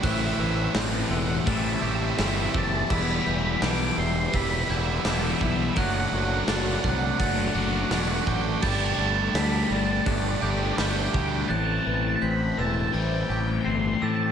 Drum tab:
CC |--------|x-------|--------|x-------|
HH |o-o-o-o-|--o-o-o-|o-o-o-o-|--o-o-o-|
SD |--o---o-|--o---o-|--o---o-|--o---o-|
BD |o---o--o|o---o--o|o--oo--o|o---o--o|

CC |--------|
HH |--------|
SD |--------|
BD |--------|